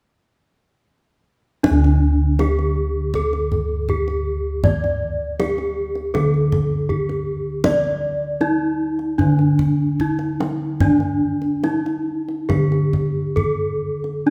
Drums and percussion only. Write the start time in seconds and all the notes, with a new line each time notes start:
1.64 kendang high, kendang low
1.84 kendang slap
2.39 kendang high
2.59 kendang slap
3.14 kendang low
3.33 kendang slap
3.52 kendang low
3.89 kendang low
4.08 kendang slap
4.64 kendang low
4.84 kendang slap
5.40 kendang high
5.58 kendang slap
5.95 kendang slap
6.15 kendang high, kendang low
6.34 kendang slap
6.52 kendang low
6.90 kendang low
7.09 kendang slap
7.64 kendang high, kendang low
7.84 kendang slap
8.41 kendang high
8.99 kendang slap
9.19 kendang low
9.39 kendang slap
9.59 kendang low
10.00 kendang low
10.19 kendang slap
10.40 kendang high
10.80 kendang low
11.00 kendang slap
11.42 kendang slap
11.64 kendang high
11.86 kendang slap
12.28 kendang slap
12.50 kendang high, kendang low
12.72 kendang slap
12.93 kendang low
13.37 kendang low
14.04 kendang slap